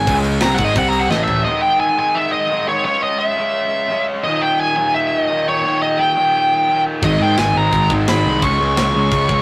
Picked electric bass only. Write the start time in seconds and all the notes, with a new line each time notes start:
0.07 C#2
0.42 C2
0.59 G#1
0.76 C2
1.10 A1
7.02 G#1
7.20 G#2
7.38 G#1
7.55 G#1
7.73 G#1
7.90 G#1
8.09 G#1
8.26 C2
8.42 C#2
8.61 C#2
8.78 C#2
8.95 C#2
9.12 C#2
9.29 C#2